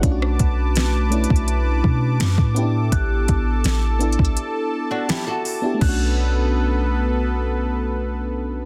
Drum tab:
CC |------------------------------------------------|------------------------------------------------|x-----------------------------------------------|
HH |x-----x-----x-----x-x-x-x-----------x-----x-----|x-----x-----x-----x-x-x-x-----------x-----o-----|------------------------------------------------|
SD |---r--------o-----------------------o-----------|------------o-----------------------o-----------|------------------------------------------------|
BD |o-----o--------------o--------o--------o--------|o-----o--------------o--------------------------|o-----------------------------------------------|